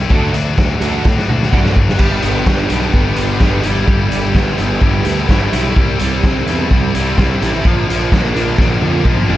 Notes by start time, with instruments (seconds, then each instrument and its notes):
Already playing: distorted electric guitar E4 G4
0.10 picked electric bass D2, distorted electric guitar D3 F#3 A3 D4 F#4, kick
0.33 picked electric bass D2, distorted electric guitar A3 D4 F#4, muted distorted electric guitar stroke, closed hi-hat
0.57 picked electric bass D2, distorted electric guitar D3 F#3 A3 D4 F#4, muted distorted electric guitar stroke, kick, snare
0.81 picked electric bass D2, distorted electric guitar A3 D4 F#4, closed hi-hat
1.05 picked electric bass A2, muted distorted electric guitar stroke, kick, snare
1.18 snare
1.28 picked electric bass D2, distorted electric guitar A3 D4 F#4, muted distorted electric guitar stroke, mid tom
1.42 snare
1.52 picked electric bass C2, distorted electric guitar F#3 A3 D4 F#4, kick, mid tom
1.66 snare
1.76 picked electric bass F#1, muted distorted electric guitar stroke, kick
1.89 snare
1.99 picked electric bass G1, distorted electric guitar G3 B3 D4 G4, kick, crash
2.22 picked electric bass G1, distorted electric guitar B3, closed hi-hat
2.46 picked electric bass G1, distorted electric guitar D4, kick, snare
2.70 picked electric bass B1, distorted electric guitar G3 B3 D4 G4, closed hi-hat
2.94 picked electric bass G1, distorted electric guitar G3 B3 D4 G4, kick
3.16 picked electric bass G1, distorted electric guitar G3 B3 D4 G4, closed hi-hat
3.40 picked electric bass G1, distorted electric guitar G3 B3 D4 G4, kick, snare
3.63 picked electric bass G1, distorted electric guitar G3 B3 E4 G4, closed hi-hat
3.88 picked electric bass G1, distorted electric guitar G3 B3 E4 G4, kick
4.09 picked electric bass G1, distorted electric guitar G3, closed hi-hat
4.33 picked electric bass G1, distorted electric guitar B3, kick, snare
4.57 picked electric bass G1, distorted electric guitar G3 B3 E4 G4, closed hi-hat
4.81 picked electric bass G1, distorted electric guitar G3 B3 E4 G4, kick
5.04 picked electric bass D2, distorted electric guitar G3 B3 E4 G4, closed hi-hat
5.29 picked electric bass G1, distorted electric guitar G3 B3 E4 G4, kick, snare
5.51 picked electric bass B1, distorted electric guitar E4 G4, closed hi-hat
5.55 distorted electric guitar B3 E4
5.76 picked electric bass C2, distorted electric guitar C3 G3 C4 E4, kick
5.99 picked electric bass C2, distorted electric guitar G3, closed hi-hat
6.23 picked electric bass C2, distorted electric guitar C4, kick, snare
6.46 picked electric bass E2, distorted electric guitar G3 C4 E4, closed hi-hat
6.69 picked electric bass C2, distorted electric guitar C3 G3 C4 E4, kick
6.94 picked electric bass C2, distorted electric guitar G3 C4 E4, closed hi-hat
7.16 picked electric bass C2, distorted electric guitar C3 G3 C4 E4, kick, snare
7.41 picked electric bass A1, distorted electric guitar G3 C4 E4, closed hi-hat
7.65 picked electric bass A#1, distorted electric guitar A#2 D3 F3 A#3 D4, kick
7.88 picked electric bass A#1, distorted electric guitar F3, closed hi-hat
8.11 picked electric bass A#1, distorted electric guitar A#3, kick, snare
8.34 picked electric bass A#1, distorted electric guitar F3 A#3 D4, closed hi-hat
8.57 picked electric bass A#1, distorted electric guitar A#2 D3 F3 A#3 D4, kick, snare
8.80 picked electric bass F2, distorted electric guitar F3 A#3 D4, high tom
9.03 picked electric bass A#1, distorted electric guitar D3 F3 A#3 D4, kick, mid tom
9.17 mid tom
9.26 picked electric bass F#1, distorted electric guitar F3 A#3 D4, floor tom